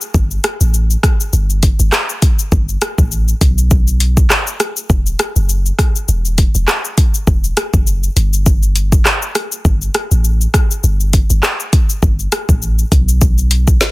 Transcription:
0.01 shaker
0.14 G1, kick, shaker
0.31 shaker
0.44 cross-stick, closed hi-hat, shaker
0.61 A1, shaker
0.74 shaker
0.90 shaker
1.03 kick, cross-stick, closed hi-hat, shaker
1.20 shaker
1.33 G1, shaker
1.50 shaker
1.63 kick, closed hi-hat, shaker
1.79 G1, shaker
1.92 cross-stick, clap, shaker
2.09 shaker
2.22 kick, closed hi-hat, shaker
2.39 shaker
2.52 G1, kick, shaker
2.69 shaker
2.82 cross-stick, closed hi-hat, shaker
2.98 A1, kick, shaker
3.12 shaker
3.28 shaker
3.41 B1, kick, closed hi-hat, shaker
3.58 shaker
3.71 kick, shaker
3.87 shaker
4.00 closed hi-hat, shaker
4.17 kick, shaker
4.30 cross-stick, clap, shaker
4.47 shaker
4.60 cross-stick, closed hi-hat, shaker
4.77 shaker
4.90 E1, kick, shaker
5.06 shaker
5.19 cross-stick, closed hi-hat, shaker
5.36 F#1, shaker
5.49 shaker
5.66 shaker
5.79 kick, cross-stick, closed hi-hat, shaker
5.96 shaker
6.08 E1, shaker
6.25 shaker
6.38 kick, closed hi-hat, shaker
6.55 E1, shaker
6.68 cross-stick, clap, shaker
6.85 shaker
6.98 kick, closed hi-hat, shaker
7.14 shaker
7.27 E1, kick, shaker
7.44 shaker
7.57 cross-stick, closed hi-hat, shaker
7.74 F#1, kick, shaker
7.87 shaker
8.03 shaker
8.16 G1, closed hi-hat, shaker
8.33 shaker
8.46 kick, shaker
8.63 shaker
8.76 closed hi-hat, shaker
8.92 kick, shaker
9.05 cross-stick, clap, shaker
9.22 shaker
9.35 cross-stick, closed hi-hat, shaker
9.52 shaker
9.65 G1, kick, shaker
9.82 shaker
9.94 cross-stick, closed hi-hat, shaker
10.11 A1, shaker
10.24 shaker
10.41 shaker
10.54 kick, cross-stick, closed hi-hat, shaker
10.71 shaker
10.84 G1, shaker
11.00 shaker
11.13 kick, closed hi-hat, shaker
11.30 G1, shaker
11.43 cross-stick, clap, shaker
11.60 shaker
11.73 kick, closed hi-hat, shaker
11.89 shaker
12.03 G1, kick, shaker
12.19 shaker
12.32 cross-stick, closed hi-hat, shaker
12.49 A1, kick, shaker
12.62 shaker
12.79 shaker
12.92 B1, kick, closed hi-hat, shaker
13.09 shaker
13.21 kick, shaker
13.38 shaker
13.51 closed hi-hat, shaker
13.68 kick, shaker
13.81 snare, shaker

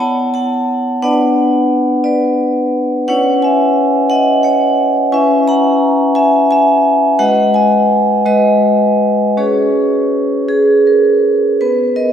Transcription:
0.00 B3 E4 C#5 F#5 A5
0.34 F#5 A5
1.02 B3 D4 B4 D5 F#5
2.04 B4 D5
3.08 C#4 E4 B4 C#5 F#5
3.42 E5 G#5
4.10 D#5 F#5
4.43 C#5 F#5
5.12 C#4 E4 B4 E5 G#5
5.48 F#5 A#5
6.15 E5 G#5
6.51 E5 G#5
7.19 G#3 F#4 B4 D#5 F#5
7.54 D#5 G#5
8.25 G#3 F#4 B4 D#5
9.37 C#4 F#4 G#4 B4 C#5
10.49 G#4
10.87 A#4
11.61 B3 B4
11.96 A#4 D#5

